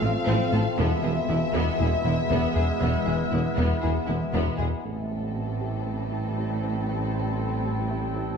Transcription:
Already playing: F3 A3 C4 F4 A4 F5
0.00 A1 A2 A3 C4 F4
0.26 A1 A2 F3 C4
0.52 A1 A2 A3 C4 A4
0.77 E1 E2 B2 E3 G#3 B3 E4 B4 E5
1.03 E1 E2 E3 B3 G#4
1.29 E1 E2 E3 B3 E4
1.53 E1 E2 E3 B3
1.79 E1 E2 B3 E4 G#4
2.05 E1 E2 E3 B3 E4
2.30 E1 E2 E3 B3
2.55 E1 E2 G#3 B3 G#4
2.80 E1 E2 E3 B3
3.06 E1 E2 E3 B3 G#4
3.30 E1 E2 E3 B3 E4
3.55 E1 E2 E3 B3
3.81 E1 E2 B3 E4 G#4
4.07 E1 E2 E3 B3 E4
4.33 E1 E2 E3 B3
4.57 E1 E2 G#3 B3 G#4
4.83 A1 A2 G3 A3 C4 E4 A4 G5
5.11 G4
5.36 C4
5.61 G4
5.87 A3
6.12 E4
6.38 G4
6.88 A3
7.15 G4
7.39 C4
7.65 G4
7.90 A3
8.16 E4

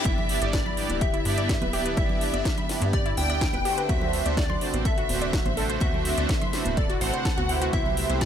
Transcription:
0.05 G1 D3 B3 E4 G4 B4 E5 B5, kick, closed hi-hat, impact, high conga
0.18 low conga
0.29 G2 B3 D4 E4 G4 D5, open hi-hat
0.41 G1 G2 B3 D4 E4 G4 D5, closed hi-hat, high conga
0.53 D5, kick, snare, closed hi-hat
0.66 B5, low conga
0.77 G2 B3 D4 E4 G4 D5, open hi-hat
0.89 D1, closed hi-hat, high conga
1.01 G4 E5, kick, closed hi-hat
1.14 E4, closed hi-hat
1.25 G2 B3 D4 E4 G4 D5, open hi-hat, high conga
1.38 D5, closed hi-hat
1.49 E4, kick, snare, closed hi-hat
1.62 D1 B4, closed hi-hat, high conga, low conga
1.73 G2 B3 D4 E4 G4 D5, open hi-hat
1.86 B4, closed hi-hat
1.97 G1 D4 E4 E5, kick, closed hi-hat, high conga
2.09 low conga
2.21 G2 B3 D4 E4 G4 D5, open hi-hat
2.33 G1 G2 B3 D4 E4 G4 D5, closed hi-hat, high conga
2.45 kick, snare, closed hi-hat
2.57 B5, closed hi-hat, low conga
2.69 G2 B3 D4 E4 G4 D5, snare, open hi-hat
2.80 G2, closed hi-hat, high conga
2.93 G4 D5, kick, closed hi-hat
3.06 E4, closed hi-hat
3.17 D2 G2 B3 D4 E4 G4 D5 G5, open hi-hat, high conga
3.30 D5, closed hi-hat
3.41 E4, kick, snare, closed hi-hat
3.53 E1 B4, closed hi-hat, high conga
3.65 D3 A3 C4 D4 F#4 G4 C5, open hi-hat
3.78 B4, closed hi-hat
3.89 D2 C3 A3 D4 F#4 E5, kick, closed hi-hat, high conga
4.01 low conga
4.13 D3 A3 C4 D4 F#4 C5, open hi-hat
4.26 D2 D3 A3 C4 D4 F#4 C5 D5, closed hi-hat, high conga
4.37 D5, kick, snare, closed hi-hat
4.50 C6, low conga
4.61 D3 A3 C4 D4 F#4 C5, open hi-hat
4.74 A1, closed hi-hat, high conga
4.85 A4 E5, kick, closed hi-hat
4.98 F#4, closed hi-hat
5.09 D1 D3 A3 C4 D4 F#4 C5, open hi-hat, high conga
5.22 D5, closed hi-hat
5.33 F#4, kick, snare, closed hi-hat
5.46 A1 C5, closed hi-hat, high conga, low conga
5.57 D3 A3 C4 D4 F#4 A4 C5, open hi-hat
5.70 C5, closed hi-hat
5.80 D2 E4 F#4 E5, kick, closed hi-hat, high conga
5.94 low conga
6.05 D3 A3 C4 D4 F#4 C5, open hi-hat
6.18 D2 D3 A3 C4 D4 F#4 C5 D5, closed hi-hat, high conga
6.29 kick, snare, closed hi-hat
6.42 C6, closed hi-hat, low conga
6.53 D3 A3 C4 D4 F#4 C5, snare, open hi-hat
6.65 D1, closed hi-hat, high conga
6.77 A4 D5, kick, closed hi-hat
6.90 F#4, closed hi-hat
7.01 A1 D3 A3 C4 D4 F#4 C5 F#5, open hi-hat, high conga
7.14 C5, closed hi-hat
7.25 A5, kick, snare, closed hi-hat
7.38 D2 F#4, closed hi-hat, high conga
7.49 C3 A3 C4 E4 G4 C5 F#5, open hi-hat
7.62 F#4, closed hi-hat
7.73 C2 E4 G4 E5, kick, closed hi-hat, high conga
7.86 low conga
7.97 C3 A3 C4 E4 G4 C5, open hi-hat
8.10 C2 C3 A3 C4 E4 G4 C5, closed hi-hat, high conga
8.21 D5, kick, snare, closed hi-hat

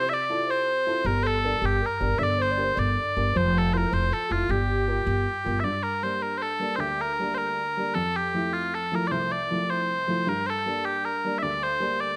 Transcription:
Already playing: C3
0.09 D5 E5
0.13 D5
0.30 E4 F4 A4
0.46 C5
0.51 C5
0.87 E4 F4 A4
1.04 G1 G3 A#4 C5
1.23 A4 C5
1.43 D4 G4 A4 A#4
1.61 G1 G4
1.66 G4
1.82 A#4
1.86 A#4
2.00 G1 D4 G4 A#4
2.19 G1 D3 D5 E5
2.23 D5
2.39 C5
2.51 D5
2.57 D4 G4 A#4
2.64 C5
2.75 G1 D5
3.17 G1 D4 G4 A#4
3.33 F1 F3 C5
3.58 A4
3.72 E4 F4 A4 A#4 C5
3.77 A#4
3.91 F1 C5
4.12 A4
4.30 F1 E4 F4 A4
4.49 G1 G3 G4
4.88 F4 G4 A#4
5.07 G1
5.45 G1 F4 G4 A#4
5.60 G2 D5 E5
5.83 A#4
6.03 G3 A#3 D4 C5
6.22 A#4
6.38 C5
6.42 A4
6.59 G3 A#3 D4
6.76 D2 C5
6.80 G4
7.01 A#4
7.19 G3 A#3 D4
7.34 A#4 C5
7.77 G3 A#3 D4
7.94 F2 A4
8.17 G4
8.34 F3 A3 E4
8.53 F4
8.75 A4
8.92 F3 A3 E4 A#4
9.07 C2 D5
9.12 C5
9.32 D5
9.50 F3 A3 E4
9.70 C5
10.07 F3 A3 E4
10.27 G2 A#4
10.46 A4 C5
10.66 G3 A#3 D4
10.85 G4
11.05 A#4
11.24 G3 A#3 D4
11.38 E5
11.43 D2 D5
11.63 C5
11.80 G3 A#3 D4
12.01 D5

